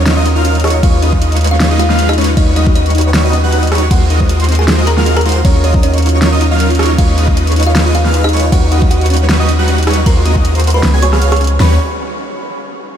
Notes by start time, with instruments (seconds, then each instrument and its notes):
Already playing: 808-style bass D#2, supersaw synth F#3 D#4 F4 A#4 C#5, digital synth lead C#6
0.06 synth arpeggio sound D#4, snare, closed hi-hat, crash
0.17 supersaw synth F#3 D#4 F4 A#4 D#5, synth arpeggio sound D#5, digital synth lead D#6
0.26 closed hi-hat
0.36 supersaw synth F#3 D#4 F4 A#4 F5, synth arpeggio sound F4, digital synth lead F6
0.45 synth arpeggio sound C#4, closed hi-hat
0.55 closed hi-hat
0.60 closed hi-hat
0.64 supersaw synth F#3 D#4 F4 A#4 C#5, synth arpeggio sound D#4, digital synth lead C#6, cross-stick, closed hi-hat
0.67 closed hi-hat
0.70 synth arpeggio sound D#5, closed hi-hat
0.83 808-style bass D#2, supersaw synth G#3 D#4 F4 B4 C#5, kalimba F4 F5, digital synth lead C#6, kick, closed hi-hat, crash
0.94 synth arpeggio sound F4
1.02 supersaw synth G#3 D#4 F4 B4 D#5, synth arpeggio sound C#4, digital synth lead D#6, closed hi-hat
1.13 kick
1.22 synth arpeggio sound D#4, closed hi-hat
1.32 supersaw synth G#3 D#4 F4 B4 C#5, synth arpeggio sound D#5, digital synth lead C#6, closed hi-hat
1.37 closed hi-hat
1.41 closed hi-hat
1.44 closed hi-hat
1.47 kalimba F4 F5, synth arpeggio sound F4, closed hi-hat
1.60 synth arpeggio sound C#4, snare, closed hi-hat, crash
1.70 supersaw synth G#3 D#4 F4 B4 D#5, digital synth lead D#6
1.79 synth arpeggio sound D#4, kalimba F4 F5, closed hi-hat
1.90 supersaw synth G#3 D#4 F4 B4 F5, synth arpeggio sound D#5, digital synth lead F6, snare
1.99 closed hi-hat
2.09 kalimba D#4 D#5, synth arpeggio sound F4, cross-stick, closed hi-hat
2.13 closed hi-hat
2.18 supersaw synth G#3 D#4 F4 B4 C#5, synth arpeggio sound C#4, digital synth lead C#6, closed hi-hat
2.21 closed hi-hat
2.24 closed hi-hat
2.37 808-style bass D#2, supersaw synth G3 D#4 F#4 B4 C#5, synth arpeggio sound D#4, kalimba D#4 D#5, digital synth lead C#6, kick, closed hi-hat, crash
2.47 synth arpeggio sound D#5
2.56 supersaw synth G3 D#4 F#4 B4 D#5, kalimba D#4 D#5, digital synth lead D#6, closed hi-hat
2.67 synth arpeggio sound F#4, kick
2.75 synth arpeggio sound C#4, kalimba D#4 D#5, closed hi-hat
2.86 supersaw synth G3 D#4 F#4 B4 C#5, digital synth lead C#6, closed hi-hat
2.90 closed hi-hat
2.95 synth arpeggio sound D#4, closed hi-hat
2.98 closed hi-hat
3.01 synth arpeggio sound D#5, closed hi-hat
3.14 snare, closed hi-hat, crash
3.24 supersaw synth G3 D#4 F#4 B4 D#5, synth arpeggio sound F#4, digital synth lead D#6
3.33 synth arpeggio sound C#4, closed hi-hat
3.43 supersaw synth G3 D#4 F#4 B4 F#5, digital synth lead F#6
3.52 synth arpeggio sound D#4, closed hi-hat
3.63 synth arpeggio sound D#5, closed hi-hat
3.67 closed hi-hat
3.72 supersaw synth G3 D#4 F#4 B4 C#5, digital synth lead C#6, cross-stick, closed hi-hat
3.75 closed hi-hat
3.78 synth arpeggio sound F#4, closed hi-hat
3.91 808-style bass D#2, supersaw synth G#3 F4 F#4 A#4 C5, synth arpeggio sound C4, kalimba F#4 F#5, digital synth lead C6, kick, closed hi-hat, crash
4.10 supersaw synth G#3 F4 F#4 A#4 D#5, synth arpeggio sound D#4, digital synth lead D#6, closed hi-hat
4.20 synth arpeggio sound C5, kick
4.29 closed hi-hat
4.40 supersaw synth G#3 F4 F#4 A#4 C5, synth arpeggio sound F4, digital synth lead C6, closed hi-hat
4.44 closed hi-hat
4.49 synth arpeggio sound C4, closed hi-hat
4.52 closed hi-hat
4.55 kalimba G#4 G#5, closed hi-hat
4.68 synth arpeggio sound D#4, snare, closed hi-hat, crash
4.78 supersaw synth G#3 F4 F#4 A#4 D#5, synth arpeggio sound C5, digital synth lead D#6
4.87 kalimba A#4 A#5, closed hi-hat
4.97 supersaw synth G#3 F4 F#4 A#4 F5, synth arpeggio sound F4, digital synth lead F6, snare
5.06 synth arpeggio sound C4, closed hi-hat
5.17 kalimba A#4 A#5, cross-stick, closed hi-hat
5.21 closed hi-hat
5.25 supersaw synth G#3 F4 F#4 A#4 C5, synth arpeggio sound D#4, digital synth lead C6, closed hi-hat
5.29 closed hi-hat
5.32 synth arpeggio sound C5, closed hi-hat
5.45 808-style bass D#2, supersaw synth F#3 D#4 F4 A#4 C#5, kalimba C#4 C#5, digital synth lead C#6, kick, closed hi-hat, crash
5.55 synth arpeggio sound F4
5.64 supersaw synth F#3 D#4 F4 A#4 D#5, synth arpeggio sound C#4, kalimba C#4 C#5, digital synth lead D#6, closed hi-hat
5.74 kick
5.83 kalimba C#4 C#5, synth arpeggio sound D#4, closed hi-hat
5.93 supersaw synth F#3 D#4 F4 A#4 C#5, synth arpeggio sound D#5, digital synth lead C#6, closed hi-hat
5.98 closed hi-hat
6.02 closed hi-hat
6.06 closed hi-hat
6.09 synth arpeggio sound F4, closed hi-hat
6.22 synth arpeggio sound C#4, snare, closed hi-hat, crash
6.32 supersaw synth F#3 D#4 F4 A#4 D#5, digital synth lead D#6
6.41 synth arpeggio sound D#4, closed hi-hat
6.51 supersaw synth F#3 D#4 F4 A#4 F5, synth arpeggio sound D#5, digital synth lead F6
6.60 closed hi-hat
6.70 synth arpeggio sound F4, closed hi-hat
6.75 closed hi-hat
6.79 supersaw synth F#3 D#4 F4 A#4 C#5, synth arpeggio sound C#4, digital synth lead C#6, cross-stick, closed hi-hat
6.83 closed hi-hat
6.86 closed hi-hat
6.98 808-style bass D#2, supersaw synth G#3 D#4 F4 B4 C#5, synth arpeggio sound D#4, kalimba F4 F5, digital synth lead C#6, kick, closed hi-hat, crash
7.09 synth arpeggio sound D#5
7.18 supersaw synth G#3 D#4 F4 B4 D#5, digital synth lead D#6, closed hi-hat
7.28 synth arpeggio sound F4, kick
7.37 synth arpeggio sound C#4, closed hi-hat
7.47 supersaw synth G#3 D#4 F4 B4 C#5, digital synth lead C#6, closed hi-hat
7.52 closed hi-hat
7.56 synth arpeggio sound D#4, closed hi-hat
7.60 closed hi-hat
7.63 kalimba F4 F5, synth arpeggio sound D#5, closed hi-hat
7.75 snare, closed hi-hat, crash
7.86 supersaw synth G#3 D#4 F4 B4 D#5, synth arpeggio sound F4, digital synth lead D#6
7.95 synth arpeggio sound C#4, kalimba F4 F5, closed hi-hat
8.05 supersaw synth G#3 D#4 F4 B4 F5, digital synth lead F6, snare
8.14 synth arpeggio sound D#4, closed hi-hat
8.24 kalimba D#4 D#5, synth arpeggio sound D#5, cross-stick, closed hi-hat
8.29 closed hi-hat
8.33 supersaw synth G#3 D#4 F4 B4 C#5, digital synth lead C#6, closed hi-hat
8.37 closed hi-hat
8.40 synth arpeggio sound F4, closed hi-hat
8.52 808-style bass D#2, supersaw synth G3 D#4 F#4 B4 C#5, synth arpeggio sound C#4, kalimba F#4 F#5, digital synth lead C#6, kick, closed hi-hat, crash
8.72 supersaw synth G3 D#4 F#4 B4 D#5, synth arpeggio sound D#4, kalimba F#4 F#5, digital synth lead D#6, closed hi-hat
8.82 synth arpeggio sound D#5, kick
8.91 kalimba F#4 F#5, closed hi-hat
9.01 supersaw synth G3 D#4 F#4 B4 C#5, synth arpeggio sound F#4, digital synth lead C#6, closed hi-hat
9.06 closed hi-hat
9.10 synth arpeggio sound C#4, closed hi-hat
9.14 closed hi-hat
9.17 closed hi-hat
9.29 synth arpeggio sound D#4, snare, closed hi-hat, crash
9.40 supersaw synth G3 D#4 F#4 B4 D#5, synth arpeggio sound D#5, digital synth lead D#6
9.49 closed hi-hat
9.59 supersaw synth G3 D#4 F#4 B4 F#5, synth arpeggio sound F#4, digital synth lead F#6
9.68 synth arpeggio sound C#4, closed hi-hat
9.78 closed hi-hat
9.83 closed hi-hat
9.87 supersaw synth G3 D#4 F#4 B4 C#5, synth arpeggio sound D#4, digital synth lead C#6, cross-stick, closed hi-hat
9.91 closed hi-hat
9.93 synth arpeggio sound D#5, closed hi-hat
10.06 808-style bass D#2, supersaw synth G#3 F4 F#4 A#4 C5, kalimba A#4 A#5, digital synth lead C6, kick, closed hi-hat, crash
10.17 synth arpeggio sound F4
10.25 supersaw synth G#3 F4 F#4 A#4 D#5, synth arpeggio sound C4, digital synth lead D#6, closed hi-hat
10.36 kick
10.45 synth arpeggio sound D#4, closed hi-hat
10.55 supersaw synth G#3 F4 F#4 A#4 C5, synth arpeggio sound C5, digital synth lead C6, closed hi-hat
10.60 closed hi-hat
10.64 closed hi-hat
10.67 closed hi-hat
10.70 kalimba B4 B5, closed hi-hat
10.74 synth arpeggio sound F4
10.83 808-style bass C#2, synth arpeggio sound C#4, snare, closed hi-hat, crash
10.93 supersaw synth B3 F#4 G#4 C#5 G#5, digital synth lead G#6
11.02 synth arpeggio sound F#4, kalimba C#5 C#6, closed hi-hat
11.13 supersaw synth B3 F#4 G#4 C#5 F5, synth arpeggio sound G#5, digital synth lead F6, cross-stick, snare
11.22 supersaw synth B3 F#4 G#4 C#5 F5, digital synth lead F6, closed hi-hat
11.32 synth arpeggio sound G#4, kalimba C#5 C#6, cross-stick, closed hi-hat
11.36 closed hi-hat
11.41 synth arpeggio sound C#4, closed hi-hat
11.44 closed hi-hat
11.47 closed hi-hat
11.60 808-style bass D#2, supersaw synth G3 D#4 F#4 B4 C#5, synth arpeggio sound C#4, kalimba B5, digital synth lead C#6, snare, floor tom, open hi-hat